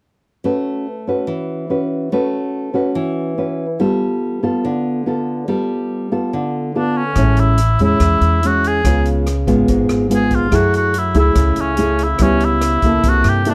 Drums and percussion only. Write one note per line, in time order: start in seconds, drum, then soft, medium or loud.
7.15 kick medium
7.15 cross-stick soft
7.15 closed hi-hat soft
7.37 closed hi-hat soft
7.58 closed hi-hat soft
7.79 closed hi-hat soft
8.00 kick soft
8.00 cross-stick medium
8.00 closed hi-hat soft
8.21 closed hi-hat soft
8.43 closed hi-hat soft
8.64 closed hi-hat soft
8.84 kick soft
8.84 cross-stick soft
8.84 closed hi-hat soft
9.05 closed hi-hat soft
9.27 cross-stick soft
9.27 closed hi-hat soft
9.47 kick soft
9.47 closed hi-hat soft
9.68 kick soft
9.68 closed hi-hat soft
9.89 cross-stick medium
9.89 closed hi-hat soft
10.11 closed hi-hat soft
10.31 kick soft
10.31 closed hi-hat soft
10.52 kick soft
10.52 cross-stick medium
10.52 closed hi-hat soft
10.74 closed hi-hat soft
10.94 closed hi-hat soft
11.14 closed hi-hat soft
11.35 kick medium
11.35 cross-stick soft
11.35 closed hi-hat soft
11.56 closed hi-hat soft
11.77 closed hi-hat soft
11.99 closed hi-hat soft
12.18 kick soft
12.18 cross-stick soft
12.18 closed hi-hat soft
12.40 closed hi-hat soft
12.61 cross-stick medium
12.61 closed hi-hat soft
12.82 kick medium
12.82 closed hi-hat soft
13.03 kick medium
13.03 closed hi-hat soft
13.24 cross-stick medium
13.24 closed hi-hat soft
13.45 closed hi-hat soft